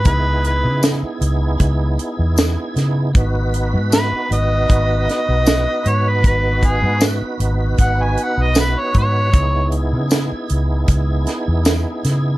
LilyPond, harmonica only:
\new Staff \with { instrumentName = "Harmonica" } { \time 4/4 \key gis \minor \tempo 4 = 78 b'8 b'8 r2. | r4 b'8 dis''4 dis''4 cis''16 b'16 | b'8 gis'8 r4 fis''16 gis''16 fis''16 dis''16 b'16 cis''16 cis''8~ | cis''8 r2. r8 | }